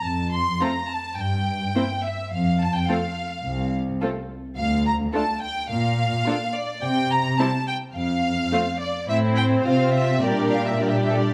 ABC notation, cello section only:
X:1
M:4/4
L:1/8
Q:1/4=106
K:F
V:1 name="Cello section" clef=bass
F,,2 z2 G,,2 z2 | F,,2 z2 C,,2 z2 | [K:Aphr] D,,2 z2 B,,2 z2 | C,2 z2 F,,2 z2 |
A,,2 C,2 B,,4 |]